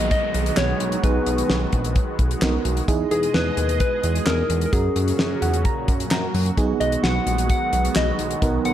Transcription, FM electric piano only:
0, 0, Header, 1, 2, 480
1, 0, Start_track
1, 0, Key_signature, 5, "major"
1, 0, Tempo, 461538
1, 1077, Time_signature, 4, 2, 24, 8
1, 9084, End_track
2, 0, Start_track
2, 0, Title_t, "FM electric piano"
2, 0, Program_c, 0, 5
2, 0, Note_on_c, 0, 59, 83
2, 0, Note_on_c, 0, 63, 75
2, 0, Note_on_c, 0, 68, 95
2, 1039, Note_off_c, 0, 59, 0
2, 1039, Note_off_c, 0, 63, 0
2, 1039, Note_off_c, 0, 68, 0
2, 1077, Note_on_c, 0, 59, 69
2, 1077, Note_on_c, 0, 63, 66
2, 1078, Note_on_c, 0, 68, 77
2, 2488, Note_off_c, 0, 59, 0
2, 2488, Note_off_c, 0, 63, 0
2, 2489, Note_off_c, 0, 68, 0
2, 2515, Note_on_c, 0, 59, 61
2, 2516, Note_on_c, 0, 63, 54
2, 2516, Note_on_c, 0, 70, 66
2, 2985, Note_off_c, 0, 63, 0
2, 2996, Note_off_c, 0, 59, 0
2, 2997, Note_off_c, 0, 70, 0
2, 2998, Note_on_c, 0, 63, 88
2, 2998, Note_on_c, 0, 64, 78
2, 2998, Note_on_c, 0, 68, 93
2, 4879, Note_off_c, 0, 63, 0
2, 4879, Note_off_c, 0, 64, 0
2, 4879, Note_off_c, 0, 68, 0
2, 4921, Note_on_c, 0, 61, 69
2, 4922, Note_on_c, 0, 66, 65
2, 4922, Note_on_c, 0, 70, 80
2, 5637, Note_on_c, 0, 78, 72
2, 5860, Note_off_c, 0, 78, 0
2, 5877, Note_on_c, 0, 82, 81
2, 6324, Note_off_c, 0, 82, 0
2, 6358, Note_on_c, 0, 82, 69
2, 6801, Note_off_c, 0, 61, 0
2, 6801, Note_off_c, 0, 66, 0
2, 6801, Note_off_c, 0, 70, 0
2, 6804, Note_off_c, 0, 82, 0
2, 6839, Note_on_c, 0, 59, 82
2, 6839, Note_on_c, 0, 63, 79
2, 6840, Note_on_c, 0, 68, 93
2, 8720, Note_off_c, 0, 59, 0
2, 8720, Note_off_c, 0, 63, 0
2, 8720, Note_off_c, 0, 68, 0
2, 8759, Note_on_c, 0, 59, 69
2, 8759, Note_on_c, 0, 63, 66
2, 8759, Note_on_c, 0, 70, 78
2, 9084, Note_off_c, 0, 59, 0
2, 9084, Note_off_c, 0, 63, 0
2, 9084, Note_off_c, 0, 70, 0
2, 9084, End_track
0, 0, End_of_file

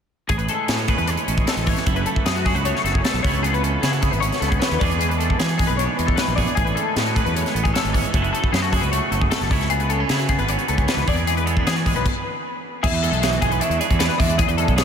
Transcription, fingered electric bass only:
0, 0, Header, 1, 2, 480
1, 0, Start_track
1, 0, Key_signature, 3, "major"
1, 0, Tempo, 391645
1, 357, Time_signature, 4, 2, 24, 8
1, 18190, End_track
2, 0, Start_track
2, 0, Title_t, "Fingered electric bass"
2, 0, Program_c, 0, 33
2, 362, Note_on_c, 0, 33, 89
2, 572, Note_off_c, 0, 33, 0
2, 839, Note_on_c, 0, 45, 81
2, 1157, Note_off_c, 0, 45, 0
2, 1196, Note_on_c, 0, 40, 77
2, 1410, Note_off_c, 0, 40, 0
2, 1564, Note_on_c, 0, 33, 75
2, 1775, Note_off_c, 0, 33, 0
2, 1919, Note_on_c, 0, 33, 79
2, 2133, Note_off_c, 0, 33, 0
2, 2289, Note_on_c, 0, 30, 94
2, 2499, Note_off_c, 0, 30, 0
2, 2763, Note_on_c, 0, 42, 93
2, 3082, Note_off_c, 0, 42, 0
2, 3115, Note_on_c, 0, 37, 80
2, 3332, Note_off_c, 0, 37, 0
2, 3478, Note_on_c, 0, 30, 75
2, 3694, Note_off_c, 0, 30, 0
2, 3842, Note_on_c, 0, 35, 82
2, 3950, Note_off_c, 0, 35, 0
2, 3973, Note_on_c, 0, 37, 81
2, 4608, Note_off_c, 0, 37, 0
2, 4690, Note_on_c, 0, 49, 90
2, 5007, Note_off_c, 0, 49, 0
2, 5059, Note_on_c, 0, 32, 74
2, 5267, Note_off_c, 0, 32, 0
2, 5408, Note_on_c, 0, 37, 84
2, 5620, Note_off_c, 0, 37, 0
2, 5775, Note_on_c, 0, 39, 86
2, 5878, Note_off_c, 0, 39, 0
2, 5901, Note_on_c, 0, 40, 83
2, 6532, Note_off_c, 0, 40, 0
2, 6612, Note_on_c, 0, 52, 90
2, 6929, Note_off_c, 0, 52, 0
2, 6977, Note_on_c, 0, 35, 75
2, 7186, Note_off_c, 0, 35, 0
2, 7340, Note_on_c, 0, 40, 78
2, 7548, Note_off_c, 0, 40, 0
2, 7694, Note_on_c, 0, 34, 74
2, 7904, Note_off_c, 0, 34, 0
2, 8059, Note_on_c, 0, 33, 87
2, 8268, Note_off_c, 0, 33, 0
2, 8531, Note_on_c, 0, 45, 93
2, 8849, Note_off_c, 0, 45, 0
2, 8899, Note_on_c, 0, 40, 79
2, 9107, Note_off_c, 0, 40, 0
2, 9248, Note_on_c, 0, 33, 75
2, 9461, Note_off_c, 0, 33, 0
2, 9612, Note_on_c, 0, 32, 80
2, 9823, Note_off_c, 0, 32, 0
2, 9978, Note_on_c, 0, 30, 96
2, 10187, Note_off_c, 0, 30, 0
2, 10447, Note_on_c, 0, 42, 94
2, 10767, Note_off_c, 0, 42, 0
2, 10804, Note_on_c, 0, 37, 80
2, 11019, Note_off_c, 0, 37, 0
2, 11166, Note_on_c, 0, 30, 77
2, 11381, Note_off_c, 0, 30, 0
2, 11531, Note_on_c, 0, 30, 75
2, 11637, Note_off_c, 0, 30, 0
2, 11655, Note_on_c, 0, 37, 85
2, 12290, Note_off_c, 0, 37, 0
2, 12373, Note_on_c, 0, 49, 97
2, 12691, Note_off_c, 0, 49, 0
2, 12725, Note_on_c, 0, 32, 79
2, 12940, Note_off_c, 0, 32, 0
2, 13098, Note_on_c, 0, 37, 75
2, 13307, Note_off_c, 0, 37, 0
2, 13439, Note_on_c, 0, 37, 74
2, 13551, Note_off_c, 0, 37, 0
2, 13580, Note_on_c, 0, 40, 84
2, 14212, Note_off_c, 0, 40, 0
2, 14292, Note_on_c, 0, 52, 90
2, 14610, Note_off_c, 0, 52, 0
2, 14646, Note_on_c, 0, 35, 68
2, 14754, Note_off_c, 0, 35, 0
2, 15739, Note_on_c, 0, 40, 114
2, 15824, Note_off_c, 0, 40, 0
2, 15831, Note_on_c, 0, 40, 92
2, 16050, Note_off_c, 0, 40, 0
2, 16077, Note_on_c, 0, 35, 79
2, 16399, Note_off_c, 0, 35, 0
2, 16454, Note_on_c, 0, 35, 83
2, 16662, Note_off_c, 0, 35, 0
2, 16786, Note_on_c, 0, 40, 89
2, 16900, Note_off_c, 0, 40, 0
2, 17045, Note_on_c, 0, 40, 87
2, 17255, Note_off_c, 0, 40, 0
2, 17402, Note_on_c, 0, 40, 82
2, 17718, Note_off_c, 0, 40, 0
2, 17759, Note_on_c, 0, 40, 89
2, 17970, Note_off_c, 0, 40, 0
2, 17996, Note_on_c, 0, 35, 88
2, 18190, Note_off_c, 0, 35, 0
2, 18190, End_track
0, 0, End_of_file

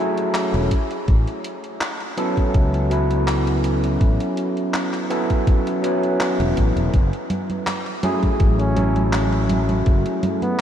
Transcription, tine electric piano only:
0, 0, Header, 1, 2, 480
1, 0, Start_track
1, 0, Tempo, 731707
1, 710, Time_signature, 4, 2, 24, 8
1, 6960, End_track
2, 0, Start_track
2, 0, Title_t, "Tine electric piano"
2, 0, Program_c, 0, 4
2, 0, Control_c, 0, 64, 127
2, 0, Note_on_c, 0, 54, 84
2, 0, Note_on_c, 0, 57, 76
2, 0, Note_on_c, 0, 61, 77
2, 0, Note_on_c, 0, 64, 75
2, 0, Note_on_c, 0, 68, 107
2, 0, Note_on_c, 0, 69, 94
2, 452, Note_off_c, 0, 54, 0
2, 454, Note_off_c, 0, 57, 0
2, 454, Note_off_c, 0, 61, 0
2, 456, Note_off_c, 0, 64, 0
2, 458, Note_off_c, 0, 69, 0
2, 479, Control_c, 0, 64, 0
2, 482, Note_off_c, 0, 68, 0
2, 590, Control_c, 0, 64, 127
2, 1422, Note_on_c, 0, 54, 97
2, 1424, Note_on_c, 0, 59, 88
2, 1427, Note_on_c, 0, 61, 94
2, 1429, Note_on_c, 0, 64, 89
2, 1432, Note_on_c, 0, 69, 107
2, 1879, Note_off_c, 0, 54, 0
2, 1880, Note_off_c, 0, 59, 0
2, 1881, Note_off_c, 0, 61, 0
2, 1883, Note_off_c, 0, 64, 0
2, 1884, Note_off_c, 0, 69, 0
2, 1899, Note_on_c, 0, 54, 82
2, 1904, Note_on_c, 0, 59, 75
2, 1910, Note_on_c, 0, 61, 74
2, 1914, Note_on_c, 0, 64, 74
2, 1920, Note_on_c, 0, 71, 87
2, 3318, Note_off_c, 0, 54, 0
2, 3320, Note_off_c, 0, 59, 0
2, 3323, Note_off_c, 0, 61, 0
2, 3325, Note_off_c, 0, 64, 0
2, 3328, Note_off_c, 0, 71, 0
2, 3343, Note_on_c, 0, 54, 96
2, 3347, Note_on_c, 0, 59, 92
2, 3347, Note_on_c, 0, 61, 89
2, 3350, Note_on_c, 0, 64, 90
2, 3354, Note_on_c, 0, 69, 106
2, 3800, Note_off_c, 0, 54, 0
2, 3801, Note_off_c, 0, 59, 0
2, 3802, Note_off_c, 0, 61, 0
2, 3803, Note_off_c, 0, 64, 0
2, 3805, Note_off_c, 0, 69, 0
2, 3823, Note_on_c, 0, 54, 84
2, 3827, Note_on_c, 0, 59, 76
2, 3831, Note_on_c, 0, 61, 76
2, 3836, Note_on_c, 0, 64, 74
2, 3841, Note_on_c, 0, 71, 87
2, 4533, Note_off_c, 0, 54, 0
2, 4535, Note_off_c, 0, 59, 0
2, 4537, Note_off_c, 0, 61, 0
2, 4539, Note_off_c, 0, 64, 0
2, 4542, Note_off_c, 0, 71, 0
2, 4559, Control_c, 0, 64, 0
2, 4678, Control_c, 0, 64, 127
2, 5266, Note_on_c, 0, 54, 97
2, 5267, Note_on_c, 0, 57, 93
2, 5271, Note_on_c, 0, 61, 85
2, 5273, Note_on_c, 0, 64, 90
2, 5276, Note_on_c, 0, 68, 108
2, 5721, Note_off_c, 0, 54, 0
2, 5722, Note_off_c, 0, 57, 0
2, 5724, Note_off_c, 0, 61, 0
2, 5724, Note_off_c, 0, 64, 0
2, 5726, Note_off_c, 0, 68, 0
2, 5738, Note_on_c, 0, 54, 83
2, 5743, Note_on_c, 0, 57, 74
2, 5749, Note_on_c, 0, 61, 74
2, 5753, Note_on_c, 0, 64, 76
2, 5757, Note_on_c, 0, 69, 90
2, 6960, Note_off_c, 0, 54, 0
2, 6960, Note_off_c, 0, 57, 0
2, 6960, Note_off_c, 0, 61, 0
2, 6960, Note_off_c, 0, 64, 0
2, 6960, Note_off_c, 0, 69, 0
2, 6960, End_track
0, 0, End_of_file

